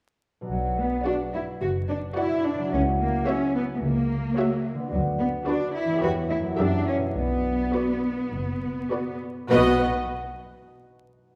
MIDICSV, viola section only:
0, 0, Header, 1, 2, 480
1, 0, Start_track
1, 0, Key_signature, 2, "minor"
1, 0, Tempo, 553506
1, 436, Time_signature, 4, 2, 24, 8
1, 5713, Tempo, 583090
1, 9637, End_track
2, 0, Start_track
2, 0, Title_t, "Viola section"
2, 0, Program_c, 0, 48
2, 912, Note_on_c, 0, 66, 48
2, 1273, Note_off_c, 0, 66, 0
2, 1868, Note_on_c, 0, 66, 52
2, 2232, Note_off_c, 0, 66, 0
2, 2830, Note_on_c, 0, 66, 56
2, 3188, Note_off_c, 0, 66, 0
2, 3788, Note_on_c, 0, 66, 57
2, 4144, Note_off_c, 0, 66, 0
2, 4745, Note_on_c, 0, 66, 58
2, 5101, Note_off_c, 0, 66, 0
2, 5219, Note_on_c, 0, 67, 55
2, 5582, Note_off_c, 0, 67, 0
2, 5708, Note_on_c, 0, 67, 54
2, 6060, Note_off_c, 0, 67, 0
2, 6653, Note_on_c, 0, 66, 51
2, 7015, Note_off_c, 0, 66, 0
2, 7624, Note_on_c, 0, 66, 49
2, 7989, Note_off_c, 0, 66, 0
2, 8108, Note_on_c, 0, 66, 64
2, 8380, Note_off_c, 0, 66, 0
2, 9637, End_track
0, 0, End_of_file